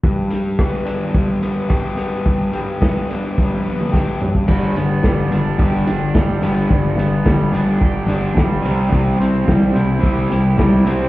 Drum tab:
CC |----------------|----------------|x---------------|----------------|
HH |--x---x---x---x-|--x---x---------|--x---x---x---x-|--x---x---x---x-|
SD |----r-------r---|----o-------o---|----o-------o---|----o-------o---|
T1 |----------------|--------oo------|----------------|----------------|
T2 |----------------|-----------o----|----------------|----------------|
FT |----------------|--------------o-|----------------|----------------|
BD |o---o---o---o---|o---o---o---o--o|o---o---o---o---|o---o---o---o---|

CC |----------------|
HH |--x---x---x---x-|
SD |----o-------o---|
T1 |----------------|
T2 |----------------|
FT |----------------|
BD |o---o---o---o---|